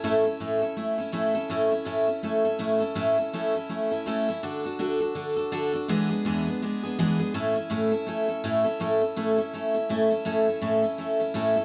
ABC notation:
X:1
M:4/4
L:1/8
Q:"Swing" 1/4=164
K:A
V:1 name="Steel-string acoustic guitar"
[A,,A,CEA] [CEA] [A,,A,CEA] [CEA] [A,CEA] [CEA] [A,,A,CEA] [CEA] | [A,,A,CEA] [CEA] [A,,A,CEA] [CEA] [A,CEA] [CEA] [A,,A,CEA] [CEA] | [A,,A,CEA] [CEA] [A,,A,CEA] [CEA] [A,CEA] [CEA] [A,,A,CEA] [CEA] | [D,DFA] [DFA] [D,DFA] [DFA] [D,DFA] [DFA] [D,DFA] [DFA] |
[E,,E,G,B,DG] [G,B,DG] [E,,E,G,B,DG] [G,B,DG] [G,B,DG] [G,B,DG] [E,,E,G,B,DG] [G,B,DG] | [A,,A,CEA] [CEA] [A,,A,CEA] [CEA] [A,CEA] [CEA] [A,,A,CEA] [CEA] | [A,,A,CEA] [CEA] [A,,A,CEA] [CEA] [A,CEA] [CEA] [A,,A,CEA] [CEA] | [A,,A,CEA] [CEA] [A,,A,CEA] [CEA] [A,CEA] [CEA] [A,,A,CEA] [CEA] |]